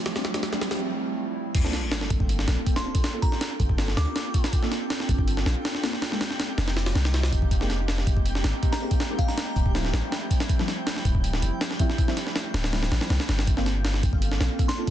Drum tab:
CC |----------------|x---------------|----------------|----------------|
HH |oo-oo-oo--------|o-o-o-o-o-o-oo-o|o-o-o-o-o-o-o-oo|o-o-o-o-o-o-o-o-|
SD |oooooooo--------|-oo-oo---oo--o--|o--oo---ooo-o--o|-oo-oo---oo-oooo|
BD |----------------|o-----oo----o--o|--o---oo------o-|o-----oo--------|

CC |----------------|----------------|----------------|----------------|
HH |o-o-o-ooooooooo-|o-o-o-o-o-o-oo-o|o-o-o-o-o-o-o-oo|o-o-o-o-o-o-o-o-|
SD |ooooo-oooooooo--|-oo-oo---oo--o--|o--oo---ooo-o--o|-oo-oo---o--oo-o|
BD |--------------oo|o-----oo----o--o|--o---oo------o-|o-----oo------o-|

CC |----------------|----------------|
HH |o-o-o-oooooooooo|o-o-o-o-o-o-oo--|
SD |-oooo-oooooooooo|-oo-oo---oo--o--|
BD |o---------------|o-----oo----o---|